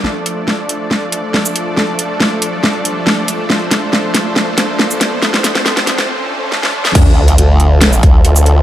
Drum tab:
CC |----------------|----------------|----------------|----------------|
HH |--x---x---x---x-|--x---x---x---x-|--x---x---x---x-|--x---x---------|
SH |-------------x--|--------------x-|-------------x--|--x-------------|
SD |o---o---o---o---|o---o---o---o---|o-o-o-o-o-o-o-o-|oooooooo----oo-o|
BD |----------------|----------------|----------------|----------------|

CC |x---------------|
HH |x--xx-x-x-x-x-x-|
SH |---------x---x--|
SD |--------o-------|
BD |o---------o-----|